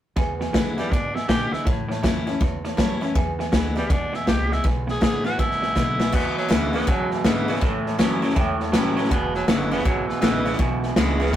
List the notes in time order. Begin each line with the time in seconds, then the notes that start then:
0.16 E2 B2 B4 E5 G#5, kick, snare
0.39 E2 B2 B4 E5 G#5, snare
0.53 E2 F#2 C#3 D3 G#3 B3 E4 B4 E5, kick, snare, hi-hat pedal
0.77 E2 B2 G3 B3 E4 B4 E5 G#5, snare
0.90 E2 G#2 B2 D4 B4 E5, kick, snare
1.14 E2 B2 E4 B4 E5 G#5, snare
1.28 E2 A#2 C#3 D3 G#3 B3 E4 G4 B4 E5 G#5, kick, snare, hi-hat pedal
1.52 E2 B2 E4 B4 E5 G#5, muted upright bass stroke, snare
1.65 A2 E3 C#5 E5 A5, kick, snare
1.88 A2 E3 C#5 E5 A5, snare
2.03 F2 A2 E3 F#3 G3 C#4 E4 C#5 E5, kick, snare, hi-hat pedal
2.27 A2 E3 C#4 E4 C#5 E5 A5, snare
2.41 E2 A2 E3 C#5 E5 A5, kick, snare
2.64 A2 E3 C#5 E5 A5, snare
2.77 F#2 A2 E3 F#3 G3 C#4 E4 C#5 E5 A5, kick, snare, hi-hat pedal
3.01 A2 E3 C#4 E4 C#5 E5 A5, snare
3.15 E2 B2 B4 E5 G#5, kick, snare
3.39 E2 B2 B4 E5 G#5, snare
3.52 D2 E2 C#3 D3 G#3 B3 E4 B4 E5 G#5, kick, snare, hi-hat pedal
3.76 E2 B2 G3 B3 E4 B4 E5 G#5, snare
3.90 E2 B2 D4 B4 E5 G#5, kick, snare
4.13 E2 B2 E4 B4 E5 G#5, snare
4.27 C#2 E2 C#3 G#3 B3 E4 G4 B4 E5 F#5, kick, snare, hi-hat pedal
4.50 E2 B2 E4 B4 E5 G#5, snare
4.64 B1 E2 B2 B4 E5 G#5, kick, snare
4.87 E2 B2 G#4 B4 E5 G#5, snare
5.01 A1 E2 C#3 D3 G#3 B3 E4 G#4 B4 E5 G#5, kick, snare, hi-hat pedal
5.24 E2 B2 B3 E4 F#4 B4 E5 G#5, snare
5.38 G#1 E2 B2 E4 B4 E5 G#5, kick, snare
5.51 snare
5.62 E2 B2 B4 E5 G#5, snare
5.75 B1 E2 C#3 D3 G#3 B3 E4 B4 E5 B5, kick, snare, hi-hat pedal
5.99 E2 B2 B3 E4 B4 E5 G#5, snare
6.13 E2 B2 B3 B4 E5 G#5, kick, snare, crash
6.37 F#3 B4 E5 G#5, snare
6.49 D2 E2 C#3 D3 E3 G#3 B3 E4 B4 E5 G#5, snare, hi-hat pedal
6.73 E2 C#3 B3 E4 B4 E5 G#5, snare
6.81 snare
6.87 E2 F#2 B2 F#3 B4 E5 G#5, kick, snare
7.11 E3 B4 E5 G#5, snare
7.24 E2 G#2 C#3 D3 E3 G#3 B3 E4 B4 E5, snare, hi-hat pedal
7.48 E2 C#3 B3 E4 B4 E5 G#5, snare
7.55 snare
7.61 A2 E3 C#5 E5 A5, kick, snare
7.86 C#5 E5 A5, snare
7.98 F#2 A2 E3 F#3 G3 C#4 E4 C#5 E5 A5, snare, hi-hat pedal
8.22 A2 F#3 C#4 E4 C#5 E5 A5, snare
8.30 snare
8.35 E2 A2 E3 C#5 E5 G5, kick, snare
8.60 C#5 E5 A5, snare
8.72 A1 A2 E3 F#3 G3 C#4 E4 C#5 E5 G5 A5, snare, hi-hat pedal
8.96 A2 F#3 C#4 E4 C#5 E5 A5, snare
9.04 snare
9.10 E1 E2 B2 B3 B4 E5 G#5, kick, snare
9.34 F#3 B4 E5 G#5, snare
9.47 F#1 E2 C#3 D3 E3 G#3 B3 E4 E5, snare, hi-hat pedal
9.71 E2 C#3 B3 E4 B4 E5 G#5, snare
9.79 snare
9.84 G#1 E2 B2 F#3 B4 E5 G#5, kick, snare
10.07 E3 B4 E5 G#5, muted upright bass stroke, snare
10.21 A1 E2 C#3 D3 E3 G#3 B3 E4 B4 E5 G#5, snare, hi-hat pedal
10.45 E2 C#3 B3 E4 B4 E5 B5, snare
10.53 snare
10.59 B1 E2 B2 B4 E5 G#5, kick, snare
10.83 B4 E5 G#5, snare
10.96 C#2 E2 C#3 D3 G#3 B3 E4 B4 E5, snare, hi-hat pedal
11.19 E2 C#3 B3 E4 B4 E5 G#5, snare
11.26 snare
11.32 B3